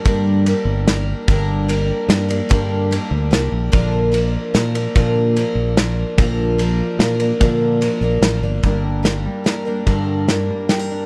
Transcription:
<<
  \new Staff \with { instrumentName = "Steel-string acoustic guitar" } { \time 3/4 \key g \minor \tempo 4 = 147 << { r2. | r2. | r2. | r2. |
r2. | r2. | r2. | <g bes d' bes'>4 d'4 bes'8 d'8~ |
d'4 d'4 g'16 bes'16 d'8 | } \\ { r2. | r2. | r2. | r2. |
r2. | r2. | r2. | g,4. g4. |
g,4. g4. | } >> }
  \new Staff \with { instrumentName = "Twelve-string acoustic guitar" } { \time 3/4 \key g \minor <g, d g bes d' bes'>4 <g bes d' bes'>4 <g bes d' bes'>4 | <g, d g bes d' bes'>4 <g bes d' bes'>4 <g bes d' bes'>8 <g bes d' bes'>8 | <g, d g bes d' bes'>4 <g bes d' bes'>4 <g bes d' bes'>4 | <bes, d f bes d' bes'>4 <f bes d' bes'>4 <f bes d' bes'>8 <f bes d' bes'>8 |
<bes, d f bes d' bes'>4 <f bes d' bes'>4 <f bes d' bes'>4 | <bes, d f bes d' bes'>4 <f bes d' bes'>4 <f bes d' bes'>8 <f bes d' bes'>8 | <bes, d f bes d' bes'>4 <f bes d' bes'>8 <f bes d' bes'>8 <f bes d' bes'>8 <f bes d' bes'>8 | <g, d g bes d' bes'>4 <g bes d' bes'>4 <g bes d' bes'>8 <g bes d' bes'>8 |
<g, d g bes d' bes'>4 <g bes d' bes'>4 <g bes d' bes'>4 | }
  \new Staff \with { instrumentName = "Fingered electric bass" } { \clef bass \time 3/4 \key g \minor g,4. g,,4. | g,,2 g,4 | g,4. d,8 c,8 bes,,8 | bes,,2 bes,4 |
bes,4. bes,,4. | bes,,2 bes,4 | bes,4. bes,,8 a,,8 g,,8 | g,,2 r4 |
g,2 r4 | }
  \new DrumStaff \with { instrumentName = "Drums" } \drummode { \time 3/4 <bd cymr>4 cymr4 <cymr sn>4 | <bd cymr>4 cymr4 <cymr sn>8 cymr8 | <bd cymr>4 cymr4 <cymr sn>4 | <bd cymr>4 cymr4 <cymr sn>8 cymr8 |
<bd cymr>4 cymr4 <cymr sn>4 | <bd cymr>4 cymr4 <cymr sn>8 cymr8 | <bd cymr>4 cymr4 <cymr sn>4 | <bd cymr>4 <cymr sn>4 <cymr sn>4 |
<bd cymr>4 <cymr sn>4 <cymr sn>4 | }
>>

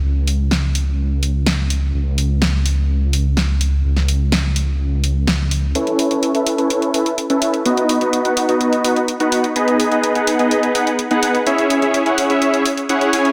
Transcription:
<<
  \new Staff \with { instrumentName = "Supersaw synth" } { \time 4/4 \key a \lydian \tempo 4 = 126 r1 | r1 | r1 | <cis' e' a' b' cis''>8. <cis' e' a' b' cis''>8 <cis' e' a' b' e''>8 <cis' e' a' b' cis''>8. <cis' e' a' b' e''>16 r8 <cis' e' a' b' e''>8 r16 |
<b dis' fis' b' dis''>8. <b dis' fis' b' dis''>8 <b dis' fis' b' fis''>8 <b dis' fis' b' dis''>8. <b dis' fis' b' fis''>16 r8 <b dis' fis' b' fis''>8 r16 | <b dis' gis' b' dis''>8. <b dis' gis' b' dis''>8 <b dis' gis' b' fis''>8 <b dis' gis' b' dis''>8. <b dis' gis' b' fis''>16 r8 <b dis' gis' b' fis''>8 r16 | <cis' e' gis' cis'' e''>8. <cis' e' gis' cis'' e''>8 <cis' e' gis' cis'' fis''>8 <cis' e' gis' cis'' e''>8. r8 <cis' e' gis' cis'' fis''>16 <cis' e' gis' cis'' fis''>16 <cis' e' gis' cis'' gis''>16 r16 | }
  \new Staff \with { instrumentName = "Detuned saw bass" } { \clef bass \time 4/4 \key a \lydian cis,1 | cis,1 | cis,1 | r1 |
r1 | r1 | r1 | }
  \new DrumStaff \with { instrumentName = "Drums" } \drummode { \time 4/4 r8 hho8 sn8 hho8 r8 hho8 sn8 hho8 | r8 hho8 sn8 hho8 r8 hho8 sn8 hho8 | r16 sn16 hho8 sn8 hho8 r8 hho8 sn8 hho8 | hh16 hh16 hho16 hh16 hh16 hh16 hho16 hh16 hh16 hh16 hho16 hh16 hh16 hh16 hho16 hh16 |
hh16 hh16 hho16 hh16 hh16 hh16 hho16 hh16 hh16 hh16 hho16 hh16 hh16 hh16 hho16 hh16 | hh16 hh16 hho16 hh16 hh16 hh16 hho16 hh16 hh16 hh16 hho16 hh16 hh16 hh16 hho16 hh16 | hh16 hh16 hho16 hh16 hh16 hh16 hho16 hh16 hh16 hh16 hho16 hh16 hh16 hh16 hho16 hh16 | }
>>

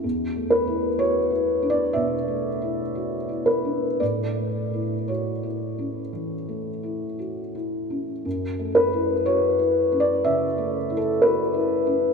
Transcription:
\new Staff \with { instrumentName = "Felt piano" } { \time 4/4 \key fis \minor \tempo 4 = 60 << { r8 b'8 cis''8. d''16 e''4. b'8 | d''4 cis''2 r4 | r8 b'8 cis''8. d''16 e''8. a'16 b'4 | } \\ { \tuplet 3/2 { e,8 a8 e'8 fis'8 e'8 d'8 b,8 a8 e'8 fis'8 e'8 d'8 } | \tuplet 3/2 { a,8 a8 e'8 fis'8 e'8 cis'8 e8 a8 e'8 fis'8 e'8 cis'8 } | \tuplet 3/2 { fis,8 a8 e'8 fis'8 e'8 cis'8 cis8 a8 e'8 fis'8 e'8 cis'8 } | } >> }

